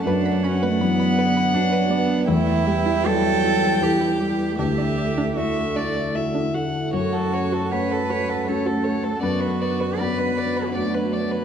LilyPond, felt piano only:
\new Staff \with { instrumentName = "Felt piano" } { \time 3/4 \key b \minor \tempo 4 = 79 fis,4 fis4 <d' fis'>4 | e,4 g4 <e' g'>4 | d,4 a4 <e' fis'>4 | fis,4 a4 <cis' fis'>4 |
fis,4 b4 <d' fis'>4 | }